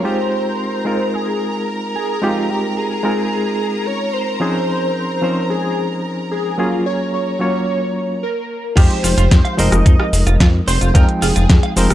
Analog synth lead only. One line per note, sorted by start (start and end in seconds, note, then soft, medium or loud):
0.04 1.15 C5 loud
1.14 1.68 G#4 medium
1.95 2.21 G#4 medium
2.23 2.51 F4 medium
2.50 2.76 G4 medium
2.77 3.88 G#4 loud
3.86 4.13 C#5 loud
4.13 5.46 C5 loud
5.50 6.01 G#4 medium
6.31 6.60 G#4 medium
6.59 6.85 F4 loud
6.86 7.11 C#5 loud
7.14 8.19 C#5 loud
8.23 8.73 A#4 medium
8.77 9.60 C5 loud
9.59 10.40 D#5 loud
10.68 10.93 C5 loud
10.95 11.07 A#4 loud
11.23 11.73 G#4 medium